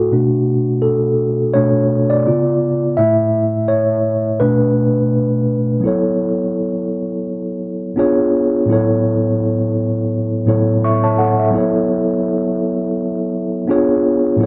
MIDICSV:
0, 0, Header, 1, 2, 480
1, 0, Start_track
1, 0, Key_signature, 2, "minor"
1, 0, Tempo, 714286
1, 80, Time_signature, 4, 2, 24, 8
1, 9719, End_track
2, 0, Start_track
2, 0, Title_t, "Tine electric piano"
2, 0, Program_c, 0, 4
2, 0, Control_c, 0, 64, 127
2, 0, Note_on_c, 0, 66, 77
2, 0, Note_on_c, 0, 69, 82
2, 76, Note_on_c, 0, 47, 49
2, 81, Note_on_c, 0, 57, 44
2, 85, Note_on_c, 0, 62, 47
2, 88, Control_c, 0, 64, 0
2, 91, Note_off_c, 0, 69, 0
2, 212, Control_c, 0, 64, 127
2, 551, Note_on_c, 0, 69, 76
2, 577, Note_off_c, 0, 66, 0
2, 1032, Note_off_c, 0, 47, 0
2, 1034, Note_off_c, 0, 57, 0
2, 1034, Note_on_c, 0, 73, 95
2, 1038, Note_off_c, 0, 62, 0
2, 1040, Note_on_c, 0, 47, 49
2, 1042, Note_on_c, 0, 57, 47
2, 1046, Note_on_c, 0, 62, 55
2, 1050, Note_off_c, 0, 69, 0
2, 1256, Note_off_c, 0, 47, 0
2, 1257, Note_off_c, 0, 57, 0
2, 1259, Note_off_c, 0, 62, 0
2, 1387, Note_off_c, 0, 73, 0
2, 1410, Note_on_c, 0, 74, 86
2, 1521, Note_on_c, 0, 49, 51
2, 1525, Note_on_c, 0, 59, 45
2, 1529, Control_c, 0, 64, 0
2, 1529, Note_on_c, 0, 65, 59
2, 1661, Control_c, 0, 64, 127
2, 1977, Note_off_c, 0, 49, 0
2, 1979, Note_off_c, 0, 59, 0
2, 1980, Note_off_c, 0, 65, 0
2, 1996, Note_on_c, 0, 76, 90
2, 2000, Note_on_c, 0, 45, 44
2, 2004, Note_on_c, 0, 57, 42
2, 2007, Note_on_c, 0, 64, 51
2, 2008, Control_c, 0, 64, 0
2, 2014, Note_off_c, 0, 74, 0
2, 2144, Control_c, 0, 64, 127
2, 2451, Note_off_c, 0, 76, 0
2, 2475, Note_on_c, 0, 73, 82
2, 2931, Note_off_c, 0, 73, 0
2, 2933, Note_off_c, 0, 45, 0
2, 2935, Note_off_c, 0, 57, 0
2, 2937, Note_off_c, 0, 64, 0
2, 2956, Note_on_c, 0, 71, 89
2, 2960, Note_on_c, 0, 47, 61
2, 2963, Note_on_c, 0, 57, 55
2, 2967, Note_on_c, 0, 62, 63
2, 2969, Control_c, 0, 64, 0
2, 3102, Control_c, 0, 64, 127
2, 3651, Note_off_c, 0, 71, 0
2, 3893, Note_off_c, 0, 47, 0
2, 3894, Note_off_c, 0, 57, 0
2, 3896, Note_off_c, 0, 62, 0
2, 3896, Note_on_c, 0, 54, 67
2, 3908, Note_on_c, 0, 59, 50
2, 3920, Note_on_c, 0, 64, 50
2, 3930, Control_c, 0, 64, 0
2, 3932, Note_on_c, 0, 69, 58
2, 3943, Note_on_c, 0, 73, 65
2, 4044, Control_c, 0, 64, 127
2, 5321, Note_off_c, 0, 54, 0
2, 5327, Note_off_c, 0, 59, 0
2, 5333, Note_off_c, 0, 64, 0
2, 5339, Note_off_c, 0, 69, 0
2, 5345, Note_off_c, 0, 73, 0
2, 5350, Note_on_c, 0, 59, 66
2, 5356, Note_on_c, 0, 62, 60
2, 5361, Note_on_c, 0, 65, 61
2, 5367, Note_on_c, 0, 68, 59
2, 5369, Control_c, 0, 64, 0
2, 5372, Note_on_c, 0, 73, 76
2, 5486, Control_c, 0, 64, 127
2, 5817, Note_on_c, 0, 45, 58
2, 5827, Note_on_c, 0, 54, 50
2, 5829, Note_off_c, 0, 59, 0
2, 5837, Note_on_c, 0, 59, 50
2, 5838, Note_off_c, 0, 62, 0
2, 5840, Note_off_c, 0, 65, 0
2, 5843, Note_off_c, 0, 68, 0
2, 5846, Note_off_c, 0, 73, 0
2, 5846, Note_on_c, 0, 64, 62
2, 5849, Control_c, 0, 64, 0
2, 5856, Note_on_c, 0, 69, 58
2, 5864, Note_on_c, 0, 73, 72
2, 5975, Control_c, 0, 64, 127
2, 7004, Note_off_c, 0, 45, 0
2, 7009, Note_off_c, 0, 54, 0
2, 7014, Note_off_c, 0, 59, 0
2, 7019, Note_off_c, 0, 64, 0
2, 7024, Note_off_c, 0, 69, 0
2, 7028, Note_off_c, 0, 73, 0
2, 7029, Note_on_c, 0, 45, 54
2, 7034, Note_on_c, 0, 54, 47
2, 7037, Note_on_c, 0, 59, 46
2, 7042, Note_on_c, 0, 64, 49
2, 7047, Note_on_c, 0, 69, 49
2, 7053, Note_on_c, 0, 73, 59
2, 7283, Note_off_c, 0, 69, 0
2, 7286, Note_off_c, 0, 73, 0
2, 7288, Note_on_c, 0, 85, 64
2, 7291, Note_on_c, 0, 76, 48
2, 7414, Note_off_c, 0, 85, 0
2, 7416, Note_off_c, 0, 76, 0
2, 7417, Note_on_c, 0, 81, 60
2, 7419, Note_on_c, 0, 73, 56
2, 7515, Note_off_c, 0, 81, 0
2, 7516, Note_off_c, 0, 73, 0
2, 7516, Note_on_c, 0, 78, 60
2, 7520, Note_on_c, 0, 69, 49
2, 7648, Note_off_c, 0, 78, 0
2, 7650, Note_off_c, 0, 69, 0
2, 7656, Note_on_c, 0, 76, 56
2, 7724, Note_off_c, 0, 54, 0
2, 7732, Note_on_c, 0, 54, 70
2, 7736, Note_off_c, 0, 59, 0
2, 7744, Note_on_c, 0, 59, 61
2, 7748, Note_off_c, 0, 64, 0
2, 7754, Note_off_c, 0, 45, 0
2, 7756, Note_on_c, 0, 64, 61
2, 7767, Note_on_c, 0, 69, 59
2, 7769, Control_c, 0, 64, 0
2, 7780, Note_on_c, 0, 73, 65
2, 7872, Control_c, 0, 64, 127
2, 7884, Note_off_c, 0, 76, 0
2, 9159, Note_off_c, 0, 54, 0
2, 9165, Note_off_c, 0, 59, 0
2, 9171, Note_off_c, 0, 64, 0
2, 9176, Note_off_c, 0, 69, 0
2, 9183, Note_off_c, 0, 73, 0
2, 9189, Note_on_c, 0, 59, 68
2, 9196, Note_on_c, 0, 62, 64
2, 9201, Note_on_c, 0, 65, 65
2, 9207, Control_c, 0, 64, 0
2, 9207, Note_on_c, 0, 68, 63
2, 9213, Note_on_c, 0, 73, 78
2, 9325, Control_c, 0, 64, 127
2, 9652, Note_on_c, 0, 45, 63
2, 9661, Note_on_c, 0, 54, 59
2, 9664, Note_off_c, 0, 59, 0
2, 9672, Note_on_c, 0, 59, 59
2, 9678, Note_off_c, 0, 62, 0
2, 9680, Note_off_c, 0, 65, 0
2, 9681, Note_on_c, 0, 64, 57
2, 9684, Note_off_c, 0, 68, 0
2, 9686, Note_off_c, 0, 73, 0
2, 9688, Control_c, 0, 64, 0
2, 9690, Note_on_c, 0, 69, 54
2, 9699, Note_on_c, 0, 73, 72
2, 9719, Note_off_c, 0, 45, 0
2, 9719, Note_off_c, 0, 54, 0
2, 9719, Note_off_c, 0, 59, 0
2, 9719, Note_off_c, 0, 64, 0
2, 9719, Note_off_c, 0, 69, 0
2, 9719, Note_off_c, 0, 73, 0
2, 9719, End_track
0, 0, End_of_file